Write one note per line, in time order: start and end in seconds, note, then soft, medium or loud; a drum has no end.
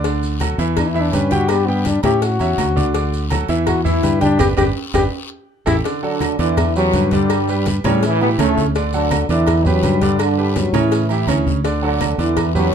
0.00 0.53 D2 medium
0.04 0.35 D3 medium
0.04 0.35 D4 medium
0.04 0.35 D5 medium
0.04 cowbell loud
0.04 long guiro medium
0.04 maracas medium
0.23 high conga soft
0.23 maracas medium
0.40 0.56 F#3 medium
0.40 0.56 F#4 medium
0.40 0.56 A4 medium
0.40 cowbell medium
0.40 high conga medium
0.40 low agogo loud
0.40 short guiro medium
0.40 claves medium
0.40 maracas medium
0.58 1.09 E2 loud
0.58 0.89 E3 loud
0.58 0.89 E4 loud
0.58 0.89 E5 medium
0.58 low agogo medium
0.58 short guiro medium
0.58 maracas soft
0.77 0.91 D4 medium
0.77 cowbell loud
0.77 high conga soft
0.77 low conga medium
0.77 low agogo loud
0.77 long guiro medium
0.77 claves medium
0.77 maracas medium
0.89 1.03 E4 loud
0.95 1.10 E3 medium
0.95 1.10 E4 medium
0.95 1.10 E5 loud
0.95 high conga soft
1.01 1.15 D4 medium
1.13 1.98 G2 medium
1.13 1.29 G3 medium
1.13 1.34 C#4 medium
1.13 1.29 G4 medium
1.13 1.29 B4 medium
1.13 cowbell medium
1.13 high conga medium
1.13 low agogo medium
1.13 short guiro medium
1.13 maracas medium
1.31 1.47 G3 loud
1.31 1.51 F#4 loud
1.31 1.47 G4 medium
1.31 1.47 G5 loud
1.31 cowbell medium
1.31 high conga medium
1.31 short guiro medium
1.31 maracas soft
1.48 1.65 B3 medium
1.48 1.69 G4 loud
1.48 1.65 B4 medium
1.48 1.65 D5 medium
1.48 cowbell loud
1.48 low agogo loud
1.48 long guiro medium
1.48 claves medium
1.48 maracas medium
1.67 1.98 G3 medium
1.67 1.88 B3 medium
1.67 1.98 G4 medium
1.67 1.98 G5 medium
1.67 high conga soft
1.85 2.04 D4 medium
1.85 cowbell medium
1.85 high conga medium
1.85 low agogo medium
1.85 short guiro medium
1.85 maracas medium
2.03 2.38 A2 medium
2.03 2.34 C#4 medium
2.03 2.25 G4 loud
2.03 2.34 C#5 medium
2.03 2.34 E5 medium
2.03 cowbell medium
2.03 high conga loud
2.03 low agogo loud
2.03 short guiro medium
2.03 claves medium
2.03 maracas soft
2.22 3.32 F#4 loud
2.22 cowbell loud
2.22 low agogo medium
2.22 long guiro medium
2.22 maracas medium
2.40 2.57 E2 medium
2.40 2.70 C#4 medium
2.40 2.70 C#5 medium
2.40 2.71 E5 medium
2.40 high conga soft
2.40 low agogo medium
2.40 maracas medium
2.58 3.43 D2 medium
2.58 cowbell medium
2.58 high conga medium
2.58 low timbale medium
2.58 low agogo loud
2.58 short guiro medium
2.58 claves medium
2.58 maracas medium
2.76 2.91 D3 medium
2.76 2.92 D4 loud
2.76 2.92 D5 medium
2.76 high conga medium
2.76 short guiro medium
2.76 maracas soft
2.94 3.24 D3 medium
2.94 3.24 D4 medium
2.94 3.25 D5 medium
2.94 cowbell loud
2.94 high conga soft
2.94 long guiro medium
2.94 maracas medium
3.13 high conga soft
3.13 maracas medium
3.30 3.46 F#3 medium
3.30 3.46 F#4 medium
3.30 3.46 A4 medium
3.30 cowbell medium
3.30 high conga loud
3.30 low agogo loud
3.30 short guiro medium
3.30 claves medium
3.30 maracas medium
3.48 4.00 E2 loud
3.48 3.79 E3 loud
3.48 3.79 E4 medium
3.48 3.79 E5 loud
3.48 high conga soft
3.48 low agogo medium
3.48 short guiro medium
3.48 maracas soft
3.67 3.84 F#4 loud
3.67 cowbell loud
3.67 high conga soft
3.67 low conga medium
3.67 low agogo loud
3.67 long guiro medium
3.67 claves medium
3.67 maracas medium
3.85 4.00 E3 loud
3.85 4.19 E4 loud
3.85 4.00 E4 medium
3.85 4.00 E5 loud
3.85 high conga soft
3.85 low conga medium
3.85 maracas medium
4.03 4.37 G2 loud
4.03 4.18 G3 medium
4.03 4.18 G4 medium
4.03 4.18 B4 medium
4.03 cowbell medium
4.03 high conga medium
4.03 low agogo medium
4.03 short guiro medium
4.03 maracas medium
4.21 4.36 G3 medium
4.21 4.39 D4 loud
4.21 4.36 G4 medium
4.21 4.36 G5 loud
4.21 cowbell medium
4.21 high conga medium
4.21 short guiro medium
4.21 maracas soft
4.39 4.53 G1 loud
4.39 4.51 D4 loud
4.39 4.51 G4 loud
4.39 4.49 G4 loud
4.39 4.51 B4 loud
4.39 cowbell loud
4.39 low conga loud
4.39 high timbale loud
4.39 long guiro loud
4.39 claves medium
4.39 maracas loud
4.57 4.71 G1 loud
4.57 4.69 D4 loud
4.57 4.69 G4 medium
4.57 4.67 G4 loud
4.57 4.69 B4 medium
4.57 cowbell loud
4.57 low conga medium
4.57 high timbale loud
4.57 long guiro loud
4.57 claves loud
4.57 maracas loud
4.94 5.08 G1 medium
4.94 5.06 D4 loud
4.94 5.06 G4 loud
4.94 5.04 G4 loud
4.94 5.06 B4 medium
4.94 cowbell loud
4.94 low conga loud
4.94 high timbale loud
4.94 long guiro loud
4.94 claves medium
4.94 maracas loud
5.66 5.80 A1 medium
5.66 5.78 E4 loud
5.66 5.76 E4 loud
5.66 5.78 G4 loud
5.66 5.78 A4 loud
5.66 cowbell loud
5.66 low conga loud
5.66 high timbale loud
5.66 long guiro loud
5.66 claves medium
5.66 maracas medium
5.84 6.00 D3 medium
5.84 6.00 D4 medium
5.84 6.00 D5 medium
5.84 cowbell loud
5.84 high conga soft
5.84 long guiro medium
5.84 maracas medium
6.03 6.37 D3 loud
6.03 6.33 F#3 medium
6.03 6.37 D4 medium
6.03 6.33 F#4 medium
6.03 6.33 A4 medium
6.03 high conga soft
6.21 cowbell medium
6.21 high conga loud
6.21 low agogo loud
6.21 short guiro medium
6.21 claves medium
6.21 maracas medium
6.39 6.90 E2 medium
6.39 6.69 D3 loud
6.39 6.73 E3 loud
6.39 6.69 D4 medium
6.39 6.74 E4 medium
6.39 6.69 D5 loud
6.39 high conga soft
6.39 low agogo medium
6.39 short guiro medium
6.39 maracas soft
6.57 cowbell loud
6.57 high conga soft
6.57 low conga medium
6.57 low agogo loud
6.57 long guiro medium
6.57 claves medium
6.57 maracas medium
6.75 7.10 F#2 medium
6.75 7.09 F#3 loud
6.75 6.91 G3 medium
6.75 6.91 G4 medium
6.75 6.91 B4 medium
6.75 high conga soft
6.75 maracas medium
6.93 7.78 G2 loud
6.93 7.09 G3 medium
6.93 7.10 G4 medium
6.93 7.10 B4 medium
6.93 cowbell medium
6.93 high conga medium
6.93 low agogo medium
6.93 short guiro medium
6.93 maracas medium
7.11 7.67 G2 medium
7.11 7.42 D3 loud
7.11 7.66 G3 loud
7.11 7.42 D4 medium
7.11 7.42 D5 medium
7.11 cowbell medium
7.11 high conga medium
7.11 short guiro medium
7.11 maracas soft
7.30 cowbell loud
7.30 high conga soft
7.30 low agogo loud
7.30 long guiro medium
7.30 claves medium
7.30 maracas medium
7.48 7.78 G3 medium
7.48 7.78 G4 medium
7.48 7.79 B4 medium
7.48 high conga soft
7.48 maracas medium
7.66 cowbell medium
7.66 high conga loud
7.66 low agogo medium
7.66 short guiro medium
7.66 maracas medium
7.84 8.02 G2 medium
7.84 8.35 A2 medium
7.84 8.14 C#3 loud
7.84 8.01 G3 loud
7.84 8.14 C#4 loud
7.84 8.15 C#5 loud
7.84 cowbell medium
7.84 high conga loud
7.84 low agogo loud
7.84 short guiro medium
7.84 claves medium
7.84 maracas soft
8.03 8.21 E3 loud
8.03 8.22 E4 medium
8.03 cowbell loud
8.03 high conga soft
8.03 low agogo medium
8.03 long guiro medium
8.03 maracas medium
8.21 8.31 B2 medium
8.21 8.36 E3 medium
8.21 8.29 B3 loud
8.21 8.36 E4 medium
8.21 8.36 G4 medium
8.21 high conga soft
8.21 low agogo loud
8.38 9.23 D2 medium
8.38 8.65 A2 medium
8.38 8.69 C#3 medium
8.38 8.64 A3 loud
8.38 8.69 C#4 loud
8.38 8.69 C#5 medium
8.38 cowbell medium
8.38 high conga medium
8.38 low agogo loud
8.38 short guiro medium
8.38 claves medium
8.38 maracas medium
8.57 high conga medium
8.57 short guiro medium
8.57 maracas soft
8.75 8.90 D3 loud
8.75 8.90 D4 medium
8.75 8.91 D5 medium
8.75 cowbell loud
8.75 long guiro medium
8.75 maracas medium
8.93 9.26 D3 loud
8.93 9.23 F#3 medium
8.93 9.27 D4 medium
8.93 9.23 F#4 medium
8.93 9.23 A4 medium
8.93 high conga soft
8.93 maracas medium
9.11 cowbell medium
9.11 high conga loud
9.11 low agogo loud
9.11 short guiro medium
9.11 claves medium
9.11 maracas medium
9.29 9.80 E2 loud
9.29 9.60 D3 loud
9.29 9.65 E3 loud
9.29 9.60 D4 loud
9.29 9.66 E4 medium
9.29 9.60 D5 loud
9.29 low agogo medium
9.29 short guiro medium
9.29 maracas soft
9.47 cowbell loud
9.47 high conga soft
9.47 low conga medium
9.47 low agogo loud
9.47 long guiro medium
9.47 claves medium
9.47 maracas medium
9.65 10.03 F#2 medium
9.65 10.01 F#3 loud
9.65 9.81 G3 medium
9.65 9.81 G4 medium
9.65 9.81 B4 medium
9.65 high conga soft
9.65 low conga medium
9.65 maracas medium
9.83 10.68 G2 medium
9.83 9.99 G3 medium
9.83 9.99 G4 medium
9.83 9.99 B4 medium
9.83 cowbell medium
9.83 high conga medium
9.83 low agogo medium
9.83 short guiro medium
9.83 maracas medium
10.01 10.20 G2 medium
10.01 10.32 D3 medium
10.01 10.19 G3 loud
10.01 10.32 D4 medium
10.01 10.32 D5 loud
10.01 cowbell medium
10.01 high conga medium
10.01 short guiro medium
10.01 maracas soft
10.19 10.53 D3 medium
10.19 10.54 D4 medium
10.19 cowbell loud
10.19 high conga soft
10.19 low agogo loud
10.19 long guiro medium
10.19 claves medium
10.19 maracas medium
10.38 10.68 G3 medium
10.38 10.68 G4 medium
10.38 10.68 B4 medium
10.38 high conga soft
10.56 10.75 F#2 medium
10.56 10.74 F#3 medium
10.56 cowbell medium
10.56 high conga loud
10.56 low agogo medium
10.56 short guiro medium
10.56 maracas medium
10.73 11.24 A2 medium
10.73 11.04 C#3 loud
10.73 11.47 E3 medium
10.73 11.04 C#4 loud
10.73 11.47 E4 medium
10.73 11.04 C#5 loud
10.73 cowbell medium
10.73 high conga loud
10.73 low agogo loud
10.73 short guiro medium
10.73 claves medium
10.73 maracas soft
10.92 cowbell loud
10.92 low agogo medium
10.92 long guiro medium
10.92 maracas medium
11.09 11.25 E3 medium
11.09 11.25 E4 medium
11.09 11.26 G4 medium
11.09 high conga soft
11.09 low agogo medium
11.09 maracas medium
11.27 12.13 D2 medium
11.27 11.58 C#3 medium
11.27 11.58 C#4 medium
11.27 11.59 C#5 medium
11.27 cowbell medium
11.27 high conga medium
11.27 low agogo loud
11.27 short guiro medium
11.27 claves medium
11.27 maracas medium
11.47 high conga loud
11.47 short guiro medium
11.47 maracas soft
11.64 11.80 D3 medium
11.64 11.80 D4 medium
11.64 11.80 D5 medium
11.64 cowbell loud
11.64 long guiro medium
11.64 maracas medium
11.82 12.17 D3 loud
11.82 12.12 F#3 medium
11.82 12.17 D4 medium
11.82 12.12 F#4 medium
11.82 12.13 A4 medium
11.82 high conga soft
12.01 cowbell medium
12.01 high conga loud
12.01 low agogo loud
12.01 short guiro medium
12.01 claves medium
12.01 maracas medium
12.18 12.69 E2 medium
12.18 12.49 D3 medium
12.18 12.56 E3 medium
12.18 12.49 D4 medium
12.18 12.57 E4 medium
12.18 12.49 D5 loud
12.18 high conga soft
12.18 low agogo medium
12.18 short guiro medium
12.18 maracas soft
12.37 cowbell loud
12.37 high conga soft
12.37 low conga medium
12.37 low agogo loud
12.37 long guiro medium
12.37 claves medium
12.37 maracas medium
12.55 12.74 F#2 medium
12.55 12.74 F#3 loud
12.55 12.70 G3 medium
12.55 12.70 G4 medium
12.55 12.70 B4 medium
12.55 high conga soft
12.55 low conga medium
12.55 maracas medium